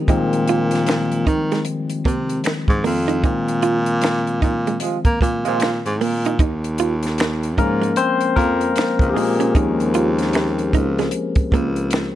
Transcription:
Already playing: tine electric piano D#3 G#3 C4
0.08 baritone saxophone A#2, tine electric piano D#3 G#3 C4, hollow-body jazz guitar D#4, kick, closed hi-hat
0.33 closed hi-hat
0.48 hollow-body jazz guitar F4, closed hi-hat
0.71 snare, closed hi-hat
0.87 finger snap, muted hollow-body jazz guitar stroke, snare, closed hi-hat
1.12 closed hi-hat
1.27 baritone saxophone D#3, hollow-body jazz guitar D#4, kick, closed hi-hat
1.52 hollow-body jazz guitar G#3, snare, closed hi-hat
1.65 closed hi-hat
1.90 closed hi-hat
2.05 baritone saxophone C3, hollow-body jazz guitar A#3, kick, closed hi-hat
2.29 closed hi-hat
2.44 finger snap, muted hollow-body jazz guitar stroke, snare, closed hi-hat
2.68 baritone saxophone G#2, kick, closed hi-hat
2.84 baritone saxophone F2, hollow-body jazz guitar A#3, open hi-hat
3.08 hollow-body jazz guitar D#4, closed hi-hat
3.24 baritone saxophone A#2, tine electric piano D#3 G#3 C4, hollow-body jazz guitar D#4, kick, closed hi-hat
3.48 closed hi-hat
3.62 hollow-body jazz guitar F4, closed hi-hat
3.86 closed hi-hat
4.02 finger snap, muted hollow-body jazz guitar stroke, snare, closed hi-hat
4.27 closed hi-hat
4.42 baritone saxophone A#2, hollow-body jazz guitar D#4, kick, closed hi-hat
4.67 hollow-body jazz guitar G#3, closed hi-hat
4.80 horn section C3 F3 G#3 F4, closed hi-hat
5.05 baritone saxophone A#3, kick, closed hi-hat
5.21 baritone saxophone A#2, hollow-body jazz guitar A#3, kick, closed hi-hat
5.44 baritone saxophone A#2, horn section C3 F3 G#3 F4, closed hi-hat
5.60 finger snap, muted hollow-body jazz guitar stroke, snare, closed hi-hat
5.86 baritone saxophone G#2, closed hi-hat
6.01 baritone saxophone A#2, hollow-body jazz guitar A#3, open hi-hat
6.25 hollow-body jazz guitar D#4, closed hi-hat
6.39 baritone saxophone D#2, hollow-body jazz guitar D#4, kick, closed hi-hat
6.64 closed hi-hat
6.78 hollow-body jazz guitar F4, closed hi-hat
7.03 snare, closed hi-hat
7.18 finger snap, muted hollow-body jazz guitar stroke, snare, closed hi-hat
7.43 closed hi-hat
7.58 baritone saxophone G#2, tine electric piano F3 G#3 A#3 C#4 A#4, hollow-body jazz guitar D#4, kick, closed hi-hat
7.82 hollow-body jazz guitar G#3, closed hi-hat
7.96 tine electric piano C4 C5, closed hi-hat
8.21 closed hi-hat
8.36 baritone saxophone F2, hollow-body jazz guitar A#3, tine electric piano A#3 A#4, kick, closed hi-hat
8.61 closed hi-hat
8.76 finger snap, muted hollow-body jazz guitar stroke, snare, closed hi-hat
8.99 baritone saxophone C#2, kick, closed hi-hat
9.09 tine electric piano G4
9.14 baritone saxophone A#2, tine electric piano G#3 G#4, hollow-body jazz guitar A#3, open hi-hat
9.40 hollow-body jazz guitar C#4, closed hi-hat
9.55 baritone saxophone D#2, tine electric piano F3 G#3 C#4, hollow-body jazz guitar D#4, kick, closed hi-hat
9.80 closed hi-hat
9.94 hollow-body jazz guitar F4, closed hi-hat
10.18 snare, closed hi-hat
10.33 finger snap, muted hollow-body jazz guitar stroke, snare, closed hi-hat
10.59 closed hi-hat
10.73 baritone saxophone C#2, hollow-body jazz guitar D#4, kick, closed hi-hat
10.99 hollow-body jazz guitar G#3, snare, closed hi-hat
11.11 closed hi-hat
11.35 kick, closed hi-hat
11.52 baritone saxophone C#2, hollow-body jazz guitar A#3, kick, closed hi-hat
11.76 closed hi-hat
11.91 finger snap, muted hollow-body jazz guitar stroke, snare, closed hi-hat

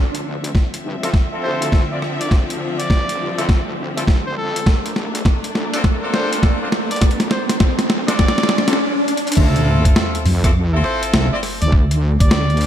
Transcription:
Already playing: wobble bass D2, string section D3 F3 C4 E5, riser
0.15 closed hi-hat
0.44 closed hi-hat
0.55 kick, snare
0.74 closed hi-hat
0.84 wobble bass G2
1.03 wobble bass F2, horn section C4 E4 F4 A4, cross-stick, closed hi-hat
1.14 kick, snare
1.33 horn section C4 E4 F4 A4
1.43 wobble bass D2, trumpet C5
1.62 closed hi-hat
1.72 kick, snare
1.91 horn section C4 E4 F4 D5
2.02 cross-stick
2.20 wobble bass D2, trumpet D5, closed hi-hat
2.31 kick, snare
2.50 closed hi-hat
2.79 trumpet D5, closed hi-hat
2.90 wobble bass A1, kick, snare
3.09 closed hi-hat
3.20 wobble bass G2
3.38 wobble bass F2, horn section C4 E4 F4 A4, cross-stick, closed hi-hat
3.49 wobble bass D2, kick, snare
3.97 horn section C4 E4 F4 A4, cross-stick, closed hi-hat
4.08 wobble bass D2, kick, snare
4.26 trumpet C5
4.37 wobble bass F2, trumpet A4
4.56 closed hi-hat
4.66 wobble bass A#1, string section A3 A#3 D4, kick, snare
4.86 closed hi-hat
4.96 snare
5.15 closed hi-hat
5.25 kick, snare
5.44 closed hi-hat
5.55 wobble bass D2, snare
5.73 wobble bass D2, horn section C4 D4 F4 A4, closed hi-hat
5.84 kick, snare
6.03 horn section C4 D4 F4 A4
6.13 wobble bass A#1, trumpet C5, snare
6.33 closed hi-hat
6.43 kick, snare
6.62 horn section C4 D4 F4 C5
6.72 snare
6.90 wobble bass A#1, trumpet D5, closed hi-hat
6.96 closed hi-hat
7.02 kick, snare, closed hi-hat
7.11 closed hi-hat
7.20 snare, closed hi-hat
7.31 trumpet C5, snare
7.49 trumpet C5, snare, closed hi-hat
7.60 wobble bass F2, kick, snare
7.79 snare, closed hi-hat
7.90 wobble bass D2, snare
8.08 wobble bass D2, horn section C4 D4 F4 A4, trumpet D5, snare, closed hi-hat
8.19 wobble bass F2, kick, snare, swell
8.28 snare
8.38 wobble bass A#1, snare
8.43 snare
8.49 snare
8.58 snare
8.68 horn section C4 D4 F4 A4, snare, closed hi-hat
8.73 snare
9.08 closed hi-hat
9.17 closed hi-hat
9.27 closed hi-hat
9.32 closed hi-hat
9.33 closed hi-hat
9.35 wobble bass D2, horn section C4 E4 F4 A4, kick, closed hi-hat, crash, sub drop
9.56 closed hi-hat
9.85 kick, closed hi-hat
9.96 snare
10.15 closed hi-hat
10.25 wobble bass F2, open hi-hat
10.44 horn section C4 E4 F4 A4, kick, cross-stick, closed hi-hat
10.46 cross-stick
10.49 cross-stick
10.51 cross-stick
10.53 cross-stick
10.74 horn section C4 E4 F4 A4
10.84 trumpet C5, cross-stick
11.03 closed hi-hat
11.14 wobble bass C2, snare
11.33 horn section C4 E4 F4 D5
11.43 cross-stick, open hi-hat
11.62 wobble bass D2, trumpet D5, closed hi-hat
11.72 kick
11.91 closed hi-hat
12.20 wobble bass D2, trumpet D5, kick, closed hi-hat
12.31 snare
12.50 closed hi-hat
12.57 closed hi-hat, open hi-hat

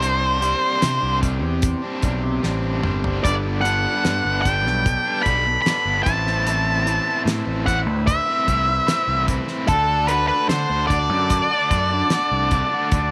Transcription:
Already playing: fingered electric bass C2, transistor combo organ G4 C5 D5, lead electric guitar C5
0.00 overdriven electric guitar C3 G3 C4 D4, closed hi-hat
0.40 overdriven electric guitar C3 G3 C4 D4, closed hi-hat
0.80 overdriven electric guitar C3 G3 C4 D4, fingered electric bass C3, snare, closed hi-hat
1.03 fingered electric bass C2
1.21 overdriven electric guitar C3 G3 C4 D4, kick, closed hi-hat
1.43 fingered electric bass E2, muted overdriven electric guitar stroke
1.62 kick, closed hi-hat
1.82 overdriven electric guitar G3 C4 D4
2.02 fingered electric bass B1, overdriven electric guitar C3 G3 C4 D4, kick, closed hi-hat
2.22 muted overdriven electric guitar stroke
2.43 fingered electric bass A1, overdriven electric guitar C3 G3 C4 D4, snare
2.83 fingered electric bass G1, overdriven electric guitar C3 G3 C4 D4, mid tom
3.04 overdriven electric guitar G3 C4 D4, floor tom
3.23 fingered electric bass G1, overdriven electric guitar G2 D3 G3, transistor combo organ A4 B4, lead electric guitar D5, kick, closed hi-hat
3.28 overdriven electric guitar B3 D4
3.61 overdriven electric guitar D3 G3, lead electric guitar F#5, closed hi-hat
3.66 overdriven electric guitar B3 D4
4.04 overdriven electric guitar G2 D3 G3 B3 D4, fingered electric bass G2, snare, closed hi-hat
4.25 fingered electric bass G1
4.42 overdriven electric guitar D3 G3, lead electric guitar G5, kick, closed hi-hat
4.47 overdriven electric guitar B3 D4
4.66 fingered electric bass B1, muted overdriven electric guitar stroke, snare
4.86 kick, closed hi-hat
5.05 overdriven electric guitar G3 B3 D4
5.23 fingered electric bass B1, overdriven electric guitar D3, lead electric guitar B5, kick, closed hi-hat
5.27 overdriven electric guitar G3 B3 D4
5.47 muted overdriven electric guitar stroke
5.62 overdriven electric guitar G2, lead electric guitar B5
5.66 overdriven electric guitar D3 G3 B3 D4, snare, closed hi-hat
5.85 fingered electric bass G1
6.03 fingered electric bass A1, overdriven electric guitar A2 E3, transistor combo organ C5 E5 A5, lead electric guitar A5, kick, closed hi-hat
6.08 overdriven electric guitar A3 C4 E4
6.27 overdriven electric guitar A3 C4 E4, snare
6.46 overdriven electric guitar A2 E3 A3 C4 E4, closed hi-hat
6.86 overdriven electric guitar E3 A3 C4 E4, closed hi-hat
7.25 fingered electric bass A2, overdriven electric guitar A2 E3 A3 C4 E4, snare, closed hi-hat
7.47 fingered electric bass A1
7.66 overdriven electric guitar E3 A3 C4 E4, lead electric guitar F#5, transistor combo organ B5, kick, closed hi-hat
7.86 fingered electric bass D2, muted overdriven electric guitar stroke
8.07 lead electric guitar E5, kick, closed hi-hat
8.26 overdriven electric guitar A3 C4 E4
8.47 fingered electric bass C2, overdriven electric guitar E3 A3 C4 E4, kick, closed hi-hat
8.67 muted overdriven electric guitar stroke
8.87 overdriven electric guitar A2 E3 A3 C4 E4, snare, closed hi-hat
9.07 fingered electric bass C2
9.28 overdriven electric guitar E3 A3 C4 E4, kick, closed hi-hat
9.48 overdriven electric guitar A3 C4 E4, snare
9.68 fingered electric bass D2, overdriven electric guitar D3 A3 D4 F#4, lead electric guitar A4, transistor combo organ A4 D5 F#5 A5, kick, closed hi-hat
10.07 overdriven electric guitar D3 A3 D4, lead electric guitar B4, closed hi-hat
10.12 overdriven electric guitar F#4
10.28 lead electric guitar B4
10.49 fingered electric bass D3, overdriven electric guitar D3 A3 D4 F#4, lead electric guitar C5, snare, closed hi-hat
10.70 fingered electric bass D2
10.87 overdriven electric guitar D3 A3, lead electric guitar D5, kick, closed hi-hat
10.92 overdriven electric guitar D4 F#4
11.09 fingered electric bass F#2, muted overdriven electric guitar stroke
11.30 kick, closed hi-hat
11.50 overdriven electric guitar A3 D4 F#4
11.71 fingered electric bass F#2, overdriven electric guitar D3 A3 D4 F#4, kick, closed hi-hat
11.91 muted overdriven electric guitar stroke
12.10 overdriven electric guitar D3 A3 D4, snare, closed hi-hat
12.14 overdriven electric guitar F#4
12.31 fingered electric bass C2
12.51 overdriven electric guitar D3 A3, kick, closed hi-hat
12.55 overdriven electric guitar D4 F#4
12.74 overdriven electric guitar A3 D4 F#4
12.92 fingered electric bass D2, overdriven electric guitar D3 A3 D4, kick, closed hi-hat
12.96 overdriven electric guitar F#4

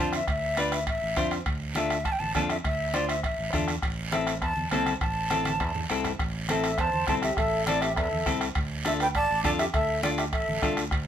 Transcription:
0.00 fingered electric bass F2, clean electric guitar D4 F4 C5, flute A5
0.13 flute E5, bombo rim, high conga, high timbale, short guiro
0.28 fingered electric bass D2, flute E5, bombo low, bombo rim, high conga, high timbale, long guiro
0.57 clean electric guitar D4 F4 B4, flute D5, bombo rim, high conga, high timbale, short guiro
0.72 flute E5, bombo rim, high timbale, short guiro
0.87 fingered electric bass A1, flute E5, bombo low, bombo rim, high conga, high timbale, long guiro
1.02 fingered electric bass A1
1.16 fingered electric bass F2, clean electric guitar D4 F4 C5, bombo low, bombo rim, high conga, high timbale, short guiro
1.31 bombo rim, high timbale, short guiro
1.46 fingered electric bass D2, bombo low, bombo rim, high conga, high timbale, long guiro
1.75 clean electric guitar D4 F4 A4, flute E5, bombo rim, high conga, high timbale, short guiro
1.90 bombo rim, high timbale, short guiro
2.05 fingered electric bass A1, flute A5, bombo low, bombo rim, high conga, high timbale, long guiro
2.12 flute G5
2.19 fingered electric bass A1, flute A5, high conga
2.35 fingered electric bass F2, clean electric guitar D4 F4 A4, flute A5, bombo low, bombo rim, high conga, high timbale, low timbale, short guiro
2.49 flute E5, bombo rim, high timbale, short guiro
2.64 fingered electric bass D2, flute E5, bombo low, bombo rim, high conga, high timbale, long guiro
2.94 clean electric guitar D4 F4 C5, flute D5, bombo rim, high conga, high timbale, short guiro
3.09 flute E5, bombo rim, high timbale, short guiro
3.23 fingered electric bass A1, flute E5, bombo low, bombo rim, high conga, high timbale, long guiro
3.39 fingered electric bass A1
3.53 fingered electric bass E2, clean electric guitar D4 F4 A4, bombo low, bombo rim, high conga, high timbale, short guiro
3.68 bombo rim, high timbale, short guiro
3.82 fingered electric bass A1, bombo low, bombo rim, high conga, high timbale, long guiro
4.12 clean electric guitar C4 E4 A4, flute E5, bombo rim, high conga, high timbale, short guiro
4.27 bombo rim, high timbale, short guiro
4.41 fingered electric bass E2, flute A5, bombo low, bombo rim, high conga, high timbale, long guiro
4.57 fingered electric bass E2, high conga
4.71 fingered electric bass C2, clean electric guitar C4 E4 A4, flute A5, bombo rim, high conga, high timbale, low timbale, short guiro
4.86 bombo rim, high conga, high timbale, short guiro
5.01 fingered electric bass A1, flute A5, bombo low, bombo rim, high conga, high timbale, long guiro
5.30 clean electric guitar C4 E4 A4, bombo rim, high conga, high timbale, short guiro
5.45 bombo rim, high conga, high timbale, short guiro
5.60 fingered electric bass E2, bombo low, bombo rim, high timbale, long guiro
5.75 fingered electric bass E2, low conga
5.90 fingered electric bass C2, clean electric guitar C4 E4 A4, bombo rim, high timbale, short guiro
6.04 bombo rim, low conga, high timbale, short guiro
6.19 fingered electric bass A1, bombo low, bombo rim, high conga, high timbale, long guiro
6.49 clean electric guitar C4 E4 A4, accordion A4, flute E5, bombo rim, high conga, high timbale, short guiro
6.63 bombo rim, high timbale, short guiro
6.78 fingered electric bass E2, accordion C5, flute A5, bombo low, bombo rim, high conga, high timbale, long guiro
6.93 fingered electric bass E2, high conga
7.07 fingered electric bass C2, clean electric guitar C4 E4 A4, accordion C5, flute A5, bombo low, bombo rim, high conga, high timbale, short guiro
7.22 accordion G4, flute E5, bombo rim, high conga, high timbale, short guiro
7.37 fingered electric bass A1, accordion A4, flute E5, bombo low, bombo rim, high conga, high timbale, long guiro
7.67 clean electric guitar C4 E4 A4, accordion A4, flute D5, bombo rim, high conga, high timbale, short guiro
7.81 accordion G4, flute E5, bombo rim, high timbale, short guiro
7.96 fingered electric bass E2, accordion A4, flute E5, bombo low, bombo rim, high conga, high timbale, long guiro
8.11 fingered electric bass E2, high conga
8.26 fingered electric bass C2, clean electric guitar C4 E4 A4, bombo low, bombo rim, high conga, high timbale, short guiro
8.41 bombo rim, high timbale, short guiro
8.55 fingered electric bass D2, bombo low, bombo rim, high conga, high timbale, long guiro
8.85 clean electric guitar D4 F4 A4, accordion A4, flute E5, bombo rim, high conga, high timbale, short guiro
9.00 accordion B4, flute G5, bombo rim, high timbale, short guiro
9.15 fingered electric bass A1, accordion D5, flute A5, bombo low, bombo rim, high conga, high timbale, long guiro
9.31 fingered electric bass A1
9.44 fingered electric bass F2, clean electric guitar D4 F4 A4, accordion D5, flute A5, bombo low, bombo rim, high conga, high timbale, short guiro
9.59 accordion G4, flute E5, bombo rim, high timbale, short guiro
9.73 fingered electric bass D2, accordion A4, flute E5, bombo low, bombo rim, high conga, high timbale, long guiro
10.03 clean electric guitar D4 F4 A4, accordion F4, flute D5, bombo rim, high conga, high timbale, short guiro
10.18 accordion G4, flute E5, bombo rim, high timbale, short guiro
10.32 fingered electric bass A1, accordion A4, flute E5, bombo low, bombo rim, high conga, high timbale, long guiro
10.48 fingered electric bass A1, high conga
10.62 fingered electric bass C2, clean electric guitar D4 F4 A4, bombo low, bombo rim, high conga, high timbale, short guiro
10.77 fingered electric bass D2, bombo rim, high timbale, short guiro
10.91 fingered electric bass D2, bombo low, bombo rim, high conga, high timbale, long guiro

